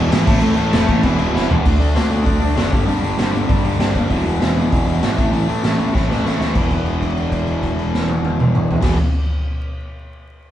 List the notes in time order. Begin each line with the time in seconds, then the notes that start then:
Already playing: E2 B2 E3
0.11 G#1 E2 B2 E3, snare, crash
0.25 A1 A2 E3 A3, kick, crash
0.40 A2 E3 A3, crash
0.56 A1 A2 E3 A3, crash
0.70 E1 A2 E3 A3, snare, crash
0.74 A3
0.86 A1 A2 E3 A3, kick, crash
1.02 E1 E2 B2 E3, kick, crash
1.18 E2 B2 E3, crash
1.33 E1 E2 B2 E3, snare
1.48 E1 E2 B2 E3, floor tom
1.64 D2 D3 A3 D4, kick, crash
1.78 D2 D3 A3 D4, open hi-hat
1.95 D2 D3 A3 D4, snare, open hi-hat
2.10 D3 A3 D4, open hi-hat
2.25 D2 D3 A3 D4, kick, open hi-hat
2.40 D2 D3 A3 D4, open hi-hat
2.55 F#1 D3 A3 D4, snare, open hi-hat
2.71 G1 G2 D3 G3, kick, open hi-hat
2.86 G1 G2 D3 G3, open hi-hat
3.01 G1 G2 D3 G3, open hi-hat
3.18 G1 G2 D3 G3, snare, open hi-hat
3.33 G1 G2 D3 G3, open hi-hat
3.48 G1 G2 D3 G3, kick, open hi-hat
3.63 G1 G2 D3 G3, open hi-hat
3.79 G1 G2 D3 G3, snare, open hi-hat
3.95 F#1 G2 D3 G3, kick, open hi-hat
4.10 E1 E2 B2 E3, kick, open hi-hat
4.24 E1 E2 B2 E3, open hi-hat
4.40 E1 E2 B2 E3, snare, open hi-hat
4.56 E2 B2 E3, open hi-hat
4.70 E1 E2 B2 E3, kick, open hi-hat
4.86 E1 E2 B2 E3, open hi-hat
5.02 G#1 E2 B2 E3, snare, open hi-hat
5.17 A1 A2 E3 A3, kick, open hi-hat
5.32 A1 A2 E3 A3, open hi-hat
5.47 A1 A2 E3 A3, open hi-hat
5.63 A1 A2 E3 A3, snare, open hi-hat
5.78 A1 A2 E3 A3, open hi-hat
5.93 A1 A2 E3 A3, kick, snare
6.08 A1 A2 E3 A3, snare
6.23 A1 A2 E3 A3, snare
6.38 D2 A2 E3 A3, snare
6.53 E1 E2 B2 E3, kick, crash
6.71 kick, crash
6.86 crash
7.01 kick, crash
7.17 crash
7.32 kick, crash
7.47 crash
7.63 kick, crash
7.79 crash
7.94 snare
8.08 high tom
8.24 high tom
8.40 mid tom
8.55 mid tom
8.71 floor tom
8.80 E1 E2 B2, kick, snare, crash
8.85 E3